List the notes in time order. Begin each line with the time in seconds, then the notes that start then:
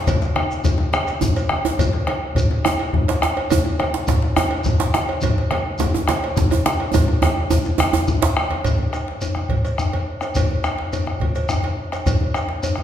0.07 bombo low, cowbell, djembe slap, djembe bass, low conga, shekere
0.22 bombo rim, djembe slap, shekere
0.36 bombo rim, cowbell, high conga, djembe tone
0.50 high conga, shekere
0.64 bombo rim, bombo low, cowbell, djembe bass, low conga, shekere
0.78 bombo rim, djembe slap, djembe tone
0.93 bombo rim, cowbell, high conga, shekere
1.07 cowbell, djembe slap, shekere
1.21 bombo rim, bombo low, djembe tone, high conga, low conga, djembe bass, shekere
1.36 bombo rim, cowbell, djembe slap, high conga, shekere
1.49 bombo rim, high conga
1.65 bombo rim, cowbell, djembe tone, high conga
1.79 bombo low, cowbell, high conga, djembe bass, low conga, shekere
1.93 djembe slap
2.07 bombo rim, cowbell, high conga, djembe tone
2.35 bombo low, cowbell, djembe bass, low conga, shekere
2.51 djembe slap, djembe tone
2.64 bombo rim, cowbell, high conga, djembe tone, shekere
2.79 cowbell
2.93 bombo low, djembe tone, high conga, djembe bass, low conga
3.08 cowbell, djembe slap
3.22 bombo rim, djembe slap
3.36 bombo rim, cowbell, djembe tone
3.50 bombo low, cowbell, high conga, djembe tone, djembe bass, low conga, shekere
3.65 djembe slap
3.79 bombo rim, cowbell, djembe tone, high conga
3.94 djembe slap
4.07 bombo low, cowbell, djembe slap, djembe bass, low conga, shekere
4.22 djembe slap
4.36 bombo rim, cowbell, djembe tone, high conga, shekere
4.51 cowbell
4.64 bombo low, high conga, djembe tone, low conga, djembe bass, shekere
4.80 cowbell, djembe slap
4.94 bombo rim, djembe slap, high conga
5.08 bombo rim, cowbell, djembe tone
5.21 bombo low, cowbell, high conga, low conga, djembe bass, shekere
5.38 djembe slap
5.51 bombo rim, cowbell, high conga, djembe tone
5.78 bombo low, cowbell, djembe slap, low conga, djembe bass, shekere
5.94 djembe slap, djembe tone
6.08 bombo rim, cowbell, djembe slap, high conga, shekere
6.24 cowbell
6.37 bombo low, djembe slap, djembe tone, high conga, djembe bass, low conga, shekere
6.51 cowbell, djembe slap, djembe tone
6.66 bombo rim, djembe slap, high conga
6.79 bombo rim, cowbell, djembe tone
6.93 bombo rim, bombo low, cowbell, djembe tone, djembe bass, low conga, shekere
7.08 djembe slap
7.22 bombo rim, cowbell, djembe slap, djembe tone, high conga
7.37 djembe slap, high conga
7.50 bombo rim, bombo low, cowbell, djembe tone, djembe bass, shekere
7.65 djembe slap, djembe tone, shekere
7.78 bombo rim, cowbell, djembe tone, high conga, shekere
7.93 cowbell, djembe tone
8.08 bombo low, djembe slap, djembe tone, djembe bass, low conga, shekere
8.22 cowbell, djembe slap, low conga
8.37 bombo rim, high conga
8.50 bombo rim, cowbell, high conga, djembe tone
8.64 bombo rim, bombo low, cowbell, low conga, djembe bass, shekere
8.79 high conga
8.93 bombo rim, cowbell, djembe tone, shekere
9.08 djembe slap
9.21 bombo rim, cowbell, djembe bass, shekere
9.35 bombo rim, djembe slap, high conga, djembe tone
9.49 bombo low, cowbell, high conga, low conga
9.65 cowbell, djembe slap, shekere
9.78 bombo rim, djembe tone, high conga, djembe bass, shekere
9.93 cowbell, high conga
10.21 bombo rim, cowbell, djembe slap, djembe tone, shekere
10.35 bombo rim, bombo low, cowbell, low conga, djembe bass, shekere
10.50 high conga
10.64 bombo rim, cowbell, djembe tone, shekere
10.78 djembe slap
10.92 bombo rim, cowbell, djembe bass, shekere
11.06 bombo rim, djembe slap, high conga, djembe tone
11.20 bombo low, cowbell, high conga, low conga
11.35 cowbell, djembe slap, shekere
11.49 bombo rim, high conga, djembe tone, djembe bass, shekere
11.63 cowbell, high conga
11.92 bombo rim, cowbell, djembe slap, djembe tone, shekere
12.06 bombo rim, bombo low, cowbell, low conga, djembe bass, shekere
12.20 high conga
12.34 bombo rim, cowbell, djembe tone, shekere
12.49 djembe slap
12.63 bombo rim, cowbell, djembe bass, shekere
12.76 bombo rim, djembe slap, djembe tone, high conga